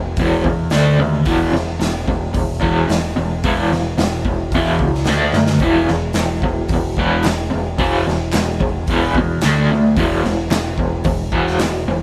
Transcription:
Already playing: E1 E2 B2
0.17 E1 E2 B2, kick, open hi-hat
0.21 E3
0.44 E2 B2, kick
0.70 D2 D3 A3 D4, snare, open hi-hat
1.00 D#2 D3 A3
1.25 E1 E2 B2 E3, kick, open hi-hat
1.54 E1 E2 B2, snare
1.80 E1 E2 B2, snare, open hi-hat
2.08 E1 E2 B2, kick
2.33 E1 E2 B2, kick, open hi-hat
2.60 E1 E2 B2 E3, kick
2.87 E1 E2 B2, snare, open hi-hat
3.16 E1 E2 B2
3.44 E1 E2 B2 E3, kick, open hi-hat
3.70 E1 E2 B2, snare
3.98 E1 E2 B2, snare, open hi-hat
4.24 E1 E2 B2, kick
4.52 E1 E2 B2 E3, kick, open hi-hat
4.79 C#2 E2 B2, kick
4.95 snare
5.04 D2 D3, snare, open hi-hat
5.09 A3 D4
5.33 F#2 D3 A3, snare
5.46 snare
5.59 E1 E2, kick, open hi-hat
5.63 B2 E3
5.88 E1 E2 B2, snare
6.13 E1 E2 B2, snare, clap, open hi-hat
6.42 E1 E2 B2, kick
6.68 E1, kick, open hi-hat
6.73 E2 B2
6.97 E1 E2 B2 E3, kick
7.24 E1 E2 B2, snare, clap, open hi-hat
7.50 E1 E2 B2
7.78 E1 E2 B2 E3, kick, open hi-hat
8.06 E1 E2 B2, snare
8.33 E1 E2 B2, snare, clap, open hi-hat
8.60 E1 E2 B2, kick
8.87 E1 E2 B2, kick, open hi-hat
8.91 E3
9.15 E2 B2, kick
9.41 D2 D3 A3, snare, clap, open hi-hat
9.46 D4
9.70 D2 D3 A3
9.96 E1 E2 B2 E3, kick, open hi-hat
10.24 E1 E2 B2, snare
10.50 E1 E2 B2, snare, clap, open hi-hat
10.78 E1 E2 B2, kick
11.04 E1 E2 B2, kick, open hi-hat
11.32 E1 E2 B2 E3, kick
11.47 snare
11.59 E1 E2, snare, clap, open hi-hat
11.63 B2
11.86 E1 E2 B2

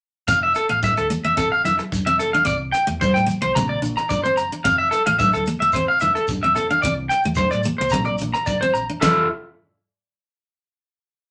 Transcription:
0.28 F1 C4 F5, kick, muted conga, shekere
0.43 E5
0.55 A4, cross-stick, closed hi-hat, shekere
0.69 A1 A3 F5, shekere
0.83 E5, kick, high conga, shekere
0.97 D2 A4, cross-stick, shekere
1.10 A#3, closed hi-hat, shekere
1.24 F1 A#3 E5
1.37 C4 A4, kick, cross-stick, muted conga, shekere
1.52 F5
1.65 F1 E4 E5, closed hi-hat, high conga, shekere
1.79 muted clean electric guitar stroke, cross-stick
1.92 E1, kick, muted conga, high conga, shekere
2.06 C4 E5, shekere
2.19 F1 A4, cross-stick, closed hi-hat, shekere
2.33 D4 F5
2.45 C2 C4 D5, kick, muted conga, shekere
2.72 G5, cross-stick, closed hi-hat, muted conga, shekere
2.87 E2 A3, shekere
3.01 C5, kick, high conga, shekere
3.14 A2 G5, cross-stick, shekere
3.26 A#3, closed hi-hat, shekere
3.42 C2 A#3 C5
3.55 A#1 C4 A#5, kick, cross-stick, muted conga, high conga, low conga, shekere
3.69 D5
3.82 A#1 D4, closed hi-hat, shekere
3.97 A#5, cross-stick
4.09 G1 D5, kick, muted conga, high conga, shekere
4.23 C4 C5, shekere
4.37 F#1 A#5, closed hi-hat, shekere
4.52 D4
4.64 F1 C4 F5, kick, muted conga, shekere
4.78 E5
4.91 A4, cross-stick, closed hi-hat, muted conga, shekere
5.06 A1 A3 F5, shekere
5.19 E5, kick, high conga, shekere
5.32 D2 A4, cross-stick, shekere
5.46 A#3, closed hi-hat, shekere
5.60 F1 A#3 E5
5.72 C4 C5, kick, cross-stick, muted conga, shekere
5.88 F5
6.00 F1 E4 E5, closed hi-hat, high conga, shekere
6.15 A4, cross-stick
6.28 E1, kick, muted conga, high conga, shekere
6.43 C4 E5, shekere
6.56 F1 A4, cross-stick, closed hi-hat, shekere
6.70 D4 F5
6.82 C2 C4 D5, kick, muted conga, shekere
7.09 G5, cross-stick, closed hi-hat, muted conga, shekere
7.24 E2 A3, shekere
7.35 C5, kick, high conga, shekere
7.51 A2 D5, cross-stick, shekere
7.63 A#3, closed hi-hat, shekere
7.78 C2 A#3 C5
7.90 A#1 A#5, kick, cross-stick, muted conga, high conga, low conga, shekere
7.94 C4
8.05 D5, shekere
8.18 A#1 D4, closed hi-hat, shekere
8.34 A#5, cross-stick, shekere
8.46 G1 D5, kick, muted conga, high conga, shekere
8.61 C4 C5
8.74 A#1 A#5, closed hi-hat, shekere
8.90 D4
9.01 F1 F3 F4 A4 E5, kick, snare, muted conga, shekere

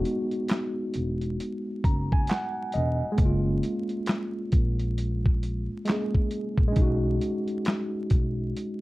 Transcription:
Already playing: G#3 B3 D#4 F#4
0.05 closed hi-hat
0.31 closed hi-hat
0.48 snare, clap, closed hi-hat
0.94 E1, closed hi-hat
1.21 closed hi-hat
1.40 closed hi-hat
1.84 F#1 A#5, kick, closed hi-hat
2.12 G#5, kick
2.27 F#5, clap, closed hi-hat
2.31 snare
2.72 E1 D#5, closed hi-hat
3.12 G#3
3.17 F#1 A#3, kick, closed hi-hat
3.21 C#4
3.25 F4
3.63 closed hi-hat
3.89 closed hi-hat
4.06 snare, clap, closed hi-hat
4.52 A#1, kick, closed hi-hat
4.79 closed hi-hat
4.98 closed hi-hat
5.26 kick
5.43 closed hi-hat
5.85 G#3 A#3, clap, closed hi-hat
5.89 C#4 G#4, snare
6.15 kick
6.31 closed hi-hat
6.58 A#1, kick
6.68 G#3
6.72 C#4, closed hi-hat
6.76 B1 D#4, kick
6.81 F#4
7.21 closed hi-hat
7.48 closed hi-hat
7.65 snare, clap, closed hi-hat
8.10 B1, kick, closed hi-hat
8.57 closed hi-hat

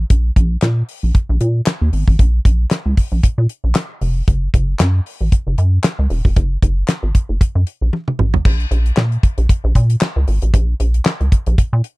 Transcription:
0.10 A#1, kick, closed hi-hat
0.36 A#1, kick, closed hi-hat
0.62 A#2, snare, clap, closed hi-hat
0.89 open hi-hat
1.03 A#1
1.15 kick, closed hi-hat
1.29 A#1
1.41 A#2, closed hi-hat
1.66 snare, clap, closed hi-hat
1.81 D#2
1.93 G#1, open hi-hat
2.08 A1, kick
2.19 A#1, kick, closed hi-hat
2.45 A#1, kick, closed hi-hat
2.70 snare, clap, closed hi-hat
2.86 C#2
2.97 kick, open hi-hat
3.12 A#1
3.23 A#2, kick, closed hi-hat
3.38 A#2
3.49 closed hi-hat
3.64 A#1
3.75 snare, clap, closed hi-hat
4.01 F1, open hi-hat
4.28 F#1, kick, closed hi-hat
4.54 F#1, kick, closed hi-hat
4.79 F#2, snare, clap, closed hi-hat
5.06 open hi-hat
5.21 A1
5.32 kick, closed hi-hat
5.47 F#1
5.58 F#2, closed hi-hat
5.83 snare, clap, closed hi-hat
5.99 C#2
6.10 E1, open hi-hat
6.25 F1, kick
6.36 F#1, kick, closed hi-hat
6.62 F#1, kick, closed hi-hat
6.88 snare, clap, closed hi-hat
7.03 G#1
7.15 kick, closed hi-hat
7.29 F#1
7.41 F#2, kick, closed hi-hat
7.55 F#2
7.67 closed hi-hat
7.81 A#1
7.93 high tom
8.08 mid tom
8.19 A1, mid tom
8.34 floor tom
8.45 A#1, kick, crash
8.60 closed hi-hat
8.71 A#1, closed hi-hat
8.86 closed hi-hat
8.96 A#2, snare, clap
9.12 closed hi-hat
9.23 kick, closed hi-hat
9.38 A#1, closed hi-hat
9.49 kick, closed hi-hat
9.64 A#1
9.75 A#2, kick, closed hi-hat
9.90 closed hi-hat
10.01 snare, clap
10.16 C#2
10.28 G#1, open hi-hat
10.42 A1, closed hi-hat
10.54 A#1, kick, closed hi-hat
10.80 A#1, closed hi-hat
10.94 closed hi-hat
11.05 snare, clap
11.21 C#2, closed hi-hat
11.32 kick, closed hi-hat
11.46 A#1, closed hi-hat
11.58 A#2, kick, closed hi-hat
11.73 A#2
11.84 closed hi-hat

